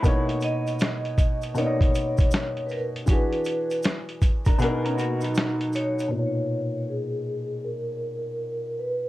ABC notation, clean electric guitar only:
X:1
M:4/4
L:1/16
Q:"Swing 16ths" 1/4=79
K:B
V:1 name="Clean electric guitar"
[G,E] z12 z3 | z6 z [=DA] [B,G] [CA] [A,F] [F,^D]4- [F,D] | z16 |]